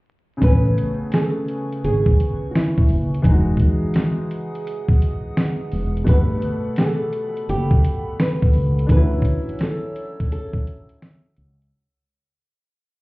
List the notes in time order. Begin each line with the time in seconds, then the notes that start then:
0.37 C#3 A3 G#5 C#6
0.41 A1 B3 B4, kick, closed hi-hat
0.47 G#5
0.78 closed hi-hat
1.12 A4, snare, closed hi-hat
1.48 closed hi-hat
1.73 closed hi-hat
1.84 G#1 G#4, closed hi-hat
2.06 kick
2.20 closed hi-hat
2.51 F#4
2.55 E4, snare, closed hi-hat
2.78 kick
2.89 F#1, open hi-hat
3.14 closed hi-hat
3.22 E1 E3 G#3 G#4 F#5 D#6, kick, closed hi-hat
3.29 D#4 F#4
3.57 kick, closed hi-hat
3.94 snare, closed hi-hat
4.31 closed hi-hat
4.55 closed hi-hat
4.67 closed hi-hat
4.88 kick
5.02 closed hi-hat
5.37 snare, closed hi-hat
5.72 E1, open hi-hat
5.97 closed hi-hat
6.04 G1 B2 G3 A4 B5, kick, closed hi-hat
6.09 A3 B4
6.13 F#5
6.42 closed hi-hat
6.76 A4, snare, closed hi-hat
7.13 closed hi-hat
7.37 closed hi-hat
7.49 F#1 G4, closed hi-hat
7.71 kick
7.84 closed hi-hat
8.20 B4, snare, closed hi-hat
8.42 kick
8.53 C#2, open hi-hat
8.79 closed hi-hat
8.87 D2 E3 D4 C#5 E6, kick, closed hi-hat
8.92 C#4 B4
8.96 F#3 E4
9.22 kick, closed hi-hat
9.49 closed hi-hat
9.59 snare, closed hi-hat
9.63 A4
9.96 closed hi-hat
10.20 kick, closed hi-hat
10.32 A4, closed hi-hat
10.53 kick
10.67 closed hi-hat
10.89 closed hi-hat
11.02 snare, closed hi-hat
11.36 C#2, closed hi-hat
11.62 closed hi-hat